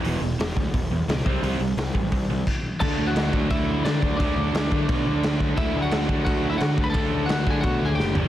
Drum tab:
CC |--------|------x-|x-x-x-x-|x-x-x-x-|
HH |o-o-o-o-|o-o-o---|--------|--------|
SD |--o---o-|--o-----|--o---o-|--o---o-|
FT |--------|--------|--------|--------|
BD |---oo--o|---oo-o-|o--oo--o|o--oo--o|

CC |x-x-x-x-|x-x-x---|
HH |--------|--------|
SD |--o---o-|--o---o-|
FT |--------|-------o|
BD |o--oo--o|o--oo---|